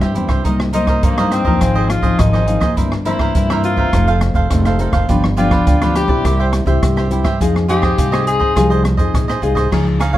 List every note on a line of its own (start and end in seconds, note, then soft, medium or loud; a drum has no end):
0.00 0.43 G2 medium
0.00 0.15 G2 medium
0.00 0.11 G3 medium
0.00 0.11 C4 medium
0.00 0.11 E4 medium
0.00 0.14 G4 medium
0.00 0.15 C5 medium
0.00 0.15 E5 medium
0.00 cross-stick medium
0.00 closed hi-hat soft
0.15 0.27 E2 medium
0.15 0.41 G3 medium
0.15 0.41 C4 medium
0.15 0.29 E4 soft
0.15 0.41 E4 medium
0.15 0.29 G4 soft
0.15 0.28 C5 soft
0.15 0.27 E5 medium
0.15 closed hi-hat soft
0.28 0.42 C2 medium
0.28 0.44 G4 medium
0.28 0.43 C5 medium
0.28 0.43 E5 medium
0.28 kick medium
0.28 cross-stick medium
0.28 closed hi-hat soft
0.44 0.94 C2 medium
0.44 1.01 C3 medium
0.44 0.70 G3 medium
0.44 0.71 A#3 medium
0.44 0.58 D#4 soft
0.44 0.71 D#4 medium
0.44 0.58 A#4 soft
0.44 0.59 C5 medium
0.44 0.59 D#5 medium
0.44 kick medium
0.44 closed hi-hat medium
0.60 muted cavaquinho stroke soft
0.60 cross-stick medium
0.73 1.02 G3 medium
0.73 1.02 A#3 medium
0.73 0.87 D#4 medium
0.73 1.06 D#4 medium
0.73 1.02 D#4 medium
0.73 0.87 A#4 medium
0.73 0.87 C5 medium
0.73 0.86 D#5 medium
0.73 closed hi-hat medium
0.87 1.02 A#4 medium
0.87 1.02 C5 medium
0.87 1.01 D#5 medium
0.87 kick medium
0.87 cross-stick medium
0.87 closed hi-hat soft
1.03 1.40 G2 medium
1.03 1.59 G2 medium
1.03 1.32 A#3 medium
1.03 1.16 D#4 medium
1.03 1.17 A#4 medium
1.03 1.17 C5 medium
1.03 1.17 D#5 medium
1.03 kick medium
1.03 closed hi-hat medium
1.18 1.43 G3 medium
1.18 1.43 A#3 medium
1.18 1.43 D#4 medium
1.18 1.46 A#4 medium
1.18 1.45 C5 medium
1.18 1.44 D#5 medium
1.18 cross-stick medium
1.18 closed hi-hat soft
1.32 1.92 C4 medium
1.32 cross-stick medium
1.32 closed hi-hat medium
1.44 1.58 D#2 medium
1.44 2.00 F3 medium
1.44 2.00 C4 medium
1.44 2.00 D#4 medium
1.44 1.60 A#4 medium
1.44 1.60 C5 medium
1.44 1.59 D#5 medium
1.44 kick medium
1.61 1.98 G#1 loud
1.61 2.17 G#2 soft
1.61 1.74 F4 medium
1.61 1.75 G#4 soft
1.61 1.75 C5 medium
1.61 1.74 D#5 medium
1.61 kick medium
1.61 cross-stick medium
1.61 closed hi-hat medium
1.75 1.88 G#4 medium
1.75 1.88 C5 medium
1.75 1.88 D#5 medium
1.89 2.21 F4 loud
1.89 muted cavaquinho stroke soft
1.89 cross-stick medium
1.89 closed hi-hat medium
2.02 2.16 G#1 medium
2.02 2.43 F3 medium
2.02 2.43 C4 medium
2.02 2.44 D#4 medium
2.02 2.32 G#4 medium
2.02 2.32 C5 medium
2.02 2.31 D#5 medium
2.02 kick medium
2.02 closed hi-hat soft
2.19 2.56 G#1 loud
2.19 2.74 D#3 medium
2.19 2.77 D#4 medium
2.19 kick loud
2.19 cross-stick medium
2.19 closed hi-hat medium
2.33 2.46 G#4 medium
2.33 2.46 C5 medium
2.33 2.47 D#5 medium
2.33 cross-stick medium
2.47 2.65 F3 medium
2.47 2.66 C4 medium
2.47 2.66 D#4 medium
2.47 2.61 F4 soft
2.47 2.61 G#4 soft
2.47 2.60 C5 soft
2.47 2.59 D#5 soft
2.47 closed hi-hat soft
2.60 2.74 D#2 medium
2.60 2.76 G#4 medium
2.60 2.75 C5 medium
2.60 2.75 D#5 medium
2.60 kick medium
2.60 cross-stick medium
2.60 closed hi-hat soft
2.77 3.26 G1 medium
2.77 3.33 G2 medium
2.77 2.95 E3 medium
2.77 2.95 A#3 medium
2.77 2.95 C4 medium
2.77 2.90 E4 medium
2.77 2.91 A#4 medium
2.77 2.91 C5 medium
2.77 2.91 E5 medium
2.77 kick medium
2.77 closed hi-hat medium
2.92 muted cavaquinho stroke soft
2.92 cross-stick medium
3.05 3.45 E3 medium
3.05 3.45 A#3 medium
3.05 3.45 C4 medium
3.05 3.19 E4 medium
3.05 3.60 E4 medium
3.05 3.19 A#4 medium
3.05 3.19 C5 medium
3.05 3.18 E5 medium
3.05 closed hi-hat soft
3.19 3.34 A#4 medium
3.19 3.34 C5 medium
3.19 3.33 E5 medium
3.19 kick medium
3.19 cross-stick medium
3.35 3.72 G2 medium
3.35 3.90 G2 medium
3.35 3.48 E4 medium
3.35 3.49 A#4 medium
3.35 3.49 C5 medium
3.35 3.49 E5 medium
3.35 kick medium
3.35 closed hi-hat medium
3.50 3.89 E3 medium
3.50 3.89 A#3 medium
3.50 3.89 C4 medium
3.50 3.78 A#4 medium
3.50 3.77 C5 medium
3.50 3.76 E5 medium
3.50 cross-stick medium
3.50 closed hi-hat soft
3.64 4.18 F4 medium
3.64 closed hi-hat soft
3.76 3.90 G1 medium
3.76 3.92 A#4 medium
3.76 3.92 C5 medium
3.76 3.91 E5 medium
3.76 kick medium
3.93 4.30 F1 loud
3.93 4.48 F2 medium
3.93 4.47 D#3 soft
3.93 4.47 A3 medium
3.93 4.47 C4 medium
3.93 4.06 D#4 medium
3.93 4.07 A4 soft
3.93 4.07 C5 medium
3.93 4.06 F5 soft
3.93 kick medium
3.93 cross-stick medium
3.93 closed hi-hat medium
4.07 4.20 A4 medium
4.07 4.21 C5 medium
4.07 4.21 F5 medium
4.07 closed hi-hat soft
4.21 muted cavaquinho stroke soft
4.21 cross-stick medium
4.21 closed hi-hat medium
4.34 4.47 F1 medium
4.34 4.65 A4 medium
4.34 4.64 C5 medium
4.34 4.64 F5 medium
4.34 kick medium
4.34 closed hi-hat soft
4.51 4.88 F1 loud
4.51 5.06 C3 medium
4.51 4.76 D#3 medium
4.51 4.76 A3 medium
4.51 4.76 C4 medium
4.51 kick medium
4.51 cross-stick medium
4.51 closed hi-hat medium
4.65 4.79 A4 medium
4.65 4.79 C5 medium
4.65 4.79 F5 medium
4.65 cross-stick medium
4.65 closed hi-hat soft
4.79 5.06 D#3 medium
4.79 5.07 A3 medium
4.79 5.07 C4 medium
4.79 4.93 D#4 medium
4.79 4.93 A4 medium
4.79 4.93 C5 soft
4.79 4.92 F5 medium
4.79 closed hi-hat soft
4.92 5.05 F1 medium
4.92 5.08 A4 soft
4.92 5.07 C5 medium
4.92 5.07 F5 medium
4.92 kick medium
4.92 cross-stick medium
4.92 closed hi-hat soft
5.08 5.58 G1 loud
5.08 5.64 G2 medium
5.08 5.26 F3 medium
5.08 5.26 B3 medium
5.08 5.27 D4 medium
5.08 5.22 F4 medium
5.08 5.22 G4 medium
5.08 5.23 B4 medium
5.08 5.23 D5 medium
5.08 kick medium
5.08 closed hi-hat medium
5.24 muted cavaquinho stroke soft
5.24 cross-stick medium
5.37 5.77 F3 medium
5.37 5.77 B3 medium
5.37 5.77 D4 medium
5.37 5.51 F4 medium
5.37 5.92 F4 medium
5.37 5.51 G4 medium
5.37 5.51 B4 medium
5.37 5.50 D5 medium
5.37 closed hi-hat soft
5.51 5.66 G4 medium
5.51 5.65 B4 medium
5.51 5.65 D5 medium
5.51 kick medium
5.51 cross-stick medium
5.51 closed hi-hat soft
5.66 6.04 D2 medium
5.66 6.22 D3 medium
5.66 5.80 F4 medium
5.66 5.80 G4 medium
5.66 5.81 B4 medium
5.66 5.80 D5 medium
5.66 kick medium
5.66 closed hi-hat medium
5.81 6.06 F3 medium
5.81 6.06 B3 medium
5.81 6.07 D4 medium
5.81 6.10 G4 medium
5.81 6.09 B4 medium
5.81 6.08 D5 medium
5.81 cross-stick medium
5.81 closed hi-hat soft
5.95 6.50 G4 loud
5.95 cross-stick medium
5.95 closed hi-hat medium
6.08 6.21 B1 loud
6.08 6.63 C4 medium
6.08 6.63 E4 medium
6.08 6.63 G4 medium
6.08 6.24 G4 medium
6.08 6.23 B4 medium
6.08 6.23 D5 medium
6.08 kick medium
6.24 6.62 C2 loud
6.24 6.80 C3 medium
6.24 6.38 E4 medium
6.24 6.38 G4 medium
6.24 6.39 C5 soft
6.24 6.38 E5 medium
6.24 kick medium
6.24 cross-stick medium
6.24 closed hi-hat medium
6.39 6.52 G4 medium
6.39 6.52 C5 medium
6.39 6.53 E5 medium
6.53 muted cavaquinho stroke soft
6.53 cross-stick medium
6.53 closed hi-hat medium
6.66 6.79 C2 loud
6.66 7.06 C4 medium
6.66 7.06 E4 medium
6.66 7.07 G4 medium
6.66 6.96 G4 medium
6.66 6.96 C5 medium
6.66 6.95 E5 medium
6.66 kick medium
6.66 closed hi-hat soft
6.83 7.20 C2 loud
6.83 7.38 G2 medium
6.83 kick medium
6.83 cross-stick medium
6.83 closed hi-hat medium
6.97 7.10 G4 medium
6.97 7.11 C5 medium
6.97 7.10 E5 medium
6.97 cross-stick medium
7.11 7.28 C4 medium
7.11 7.25 E4 soft
7.11 7.28 E4 medium
7.11 7.28 G4 medium
7.11 7.25 G4 medium
7.11 7.24 C5 soft
7.11 7.23 E5 medium
7.11 closed hi-hat medium
7.24 7.37 G2 medium
7.24 7.40 G4 medium
7.24 7.39 C5 medium
7.24 7.38 E5 medium
7.24 kick medium
7.24 cross-stick medium
7.24 closed hi-hat soft
7.40 7.90 F2 medium
7.40 7.96 F3 medium
7.40 7.65 C4 medium
7.40 7.65 D#4 medium
7.40 7.54 F4 medium
7.40 7.54 G#4 medium
7.40 7.65 G#4 medium
7.40 7.54 C5 medium
7.40 7.55 D#5 medium
7.40 kick medium
7.40 closed hi-hat medium
7.55 muted cavaquinho stroke soft
7.55 cross-stick medium
7.68 8.08 C4 medium
7.68 8.08 D#4 medium
7.68 7.82 F4 medium
7.68 8.23 G4 loud
7.68 7.83 G#4 medium
7.68 7.82 C5 medium
7.68 7.81 D#5 medium
7.68 closed hi-hat medium
7.82 7.97 G#4 medium
7.82 7.97 C5 medium
7.82 7.96 D#5 medium
7.82 kick medium
7.82 cross-stick medium
7.97 8.35 C2 medium
7.97 8.53 C3 medium
7.97 8.11 F4 medium
7.97 8.12 G#4 medium
7.97 8.12 C5 medium
7.97 8.11 D#5 medium
7.97 kick loud
7.97 closed hi-hat medium
8.12 8.52 C4 medium
8.12 8.52 D#4 medium
8.12 8.40 G#4 medium
8.12 8.52 G#4 medium
8.12 8.39 C5 medium
8.12 8.38 D#5 medium
8.12 cross-stick medium
8.12 closed hi-hat soft
8.27 8.81 G#4 medium
8.27 closed hi-hat medium
8.39 8.53 F2 medium
8.39 8.54 G#4 medium
8.39 8.54 C5 medium
8.39 8.54 D#5 medium
8.39 kick medium
8.55 8.93 C2 loud
8.55 9.11 F3 medium
8.55 8.83 C4 medium
8.55 8.84 D#4 medium
8.55 8.69 F4 medium
8.55 8.69 G#4 soft
8.55 8.84 G#4 medium
8.55 8.70 C5 medium
8.55 8.69 D#5 medium
8.55 kick medium
8.55 cross-stick medium
8.55 closed hi-hat medium
8.70 8.83 G#4 medium
8.70 8.83 C5 medium
8.70 8.83 D#5 medium
8.70 closed hi-hat soft
8.84 muted cavaquinho stroke soft
8.84 cross-stick medium
8.84 closed hi-hat medium
8.97 9.11 F2 medium
8.97 9.38 C4 medium
8.97 9.38 D#4 medium
8.97 9.27 G#4 medium
8.97 9.38 G#4 medium
8.97 9.27 C5 medium
8.97 9.26 D#5 medium
8.97 kick medium
8.97 closed hi-hat soft
9.14 9.40 A#1 medium
9.14 9.69 C3 medium
9.14 kick medium
9.14 cross-stick medium
9.14 closed hi-hat medium
9.28 9.41 G#4 medium
9.28 9.42 C5 medium
9.28 9.42 D#5 medium
9.28 cross-stick medium
9.28 closed hi-hat soft
9.42 9.68 C2 medium
9.42 9.67 C4 medium
9.42 9.67 D#4 medium
9.42 9.56 F4 medium
9.42 9.56 G#4 medium
9.42 9.67 G#4 medium
9.42 9.55 C5 medium
9.42 9.54 D#5 medium
9.42 closed hi-hat soft
9.55 9.71 G#4 medium
9.55 9.70 C5 medium
9.55 9.69 D#5 medium
9.55 kick medium
9.55 cross-stick medium
9.55 closed hi-hat soft
9.71 10.18 C#2 medium
9.71 10.18 C#3 medium
9.71 9.99 F3 medium
9.71 9.99 G#3 medium
9.71 9.85 D#4 medium
9.71 9.99 D#4 medium
9.71 9.85 G#4 medium
9.71 9.85 C#5 soft
9.71 9.86 F5 medium
9.71 kick medium
9.71 cross-stick medium
9.71 crash medium
9.87 muted cavaquinho stroke soft
10.00 10.13 D#4 medium
10.00 10.14 G#4 medium
10.00 10.13 C#5 medium
10.00 10.12 F5 medium
10.00 cross-stick medium
10.00 closed hi-hat medium
10.13 10.18 F3 medium
10.13 10.18 G#4 medium
10.13 10.18 C#5 medium
10.13 10.18 F5 medium
10.13 kick medium